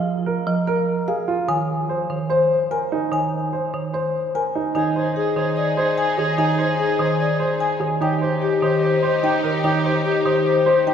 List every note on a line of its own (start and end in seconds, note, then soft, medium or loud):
0.00 0.12 F3 medium
0.00 0.12 F5 medium
0.26 0.53 A#4 medium
0.47 0.73 F3 medium
0.67 0.94 A#4 medium
1.08 1.34 G#4 medium
1.08 1.34 F5 medium
1.28 1.55 F4 medium
1.49 1.75 D#3 medium
1.49 1.75 G#5 medium
1.89 2.16 C5 medium
2.10 2.36 D#3 medium
2.30 2.57 C5 medium
2.71 2.97 A#4 medium
2.71 2.98 G#5 medium
2.92 3.18 D#4 medium
3.12 3.38 D#3 medium
3.12 3.39 G#5 medium
3.53 3.79 C5 medium
3.74 4.00 D#3 medium
3.94 4.20 C5 medium
4.35 4.61 A#4 medium
4.35 4.61 G#5 medium
4.55 4.74 D#4 medium
4.75 5.02 D#3 medium
4.75 7.77 D#4 medium
4.75 5.02 D#4 medium
4.75 7.77 G#4 medium
4.75 4.90 G#4 soft
4.75 5.02 G#5 medium
4.96 5.11 G#4 soft
4.96 5.22 C5 medium
5.16 5.43 G#4 medium
5.16 5.31 G#4 soft
5.36 5.63 D#3 medium
5.36 5.51 G#4 medium
5.36 5.63 C5 medium
5.57 5.71 G#4 medium
5.57 5.83 D5 medium
5.77 5.91 G#4 medium
5.77 6.04 C5 medium
5.98 6.13 G#4 medium
5.98 6.24 G#5 medium
6.18 6.37 D#3 medium
6.18 6.44 G#4 medium
6.18 6.33 G#4 medium
6.38 6.65 D#3 medium
6.38 6.65 D#4 medium
6.38 6.53 G#4 medium
6.38 6.65 G#5 medium
6.58 6.73 G#4 medium
6.58 6.85 C5 medium
6.79 7.06 G#4 medium
6.79 6.94 G#4 medium
6.99 7.26 D#3 medium
6.99 7.14 G#4 medium
6.99 7.26 C5 medium
7.20 7.34 G#4 soft
7.20 7.47 D5 medium
7.39 7.54 G#4 soft
7.39 7.67 C5 medium
7.60 7.75 G#4 soft
7.60 7.87 G#5 medium
7.80 8.00 D#3 medium
7.80 8.07 G#4 medium
8.00 8.28 D#3 medium
8.00 8.28 D#4 medium
8.00 10.94 D#4 medium
8.00 10.94 G4 medium
8.00 8.16 G4 soft
8.00 8.28 G5 medium
8.21 8.36 G4 soft
8.21 8.48 C5 medium
8.42 8.69 G4 medium
8.42 8.56 G4 soft
8.62 8.89 D#3 medium
8.62 8.77 G4 medium
8.62 8.89 C5 medium
8.83 8.97 G4 medium
8.83 9.10 C5 medium
9.02 9.18 G4 medium
9.02 9.30 C5 medium
9.23 9.50 D#4 medium
9.23 9.38 G4 medium
9.23 9.50 G5 medium
9.43 9.63 D#3 medium
9.43 9.58 G4 medium
9.43 9.71 A#4 medium
9.64 9.91 D#3 medium
9.64 9.91 D#4 medium
9.64 9.79 G4 medium
9.64 9.91 G5 medium
9.84 9.99 G4 medium
9.84 10.12 C5 medium
10.05 10.19 G4 medium
10.05 10.32 G4 medium
10.25 10.52 D#3 medium
10.25 10.40 G4 medium
10.25 10.52 C5 medium
10.46 10.61 G4 soft
10.46 10.73 C5 medium
10.66 10.81 G4 soft
10.66 10.93 C5 medium
10.87 10.94 D#4 medium
10.87 10.94 G4 soft
10.87 10.94 G5 medium